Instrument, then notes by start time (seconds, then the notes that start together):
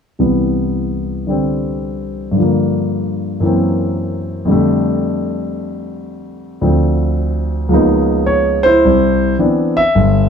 grand piano
0.19 C2 C3 E3 B3
1.27 D3 G3 C4
2.31 G2 D3
2.39 F3 A#3
3.40 F#2 E3 A#3
3.46 C4
4.45 F2 D3 G3
4.51 A3
6.61 D2 D3 F3 C4
7.69 C#2 C#3 F3 A#3 B3
7.74 D#4
8.26 C#5
8.63 E4 C5
8.85 C2
9.39 E3 B3 C4 D4
9.77 E5
9.95 G1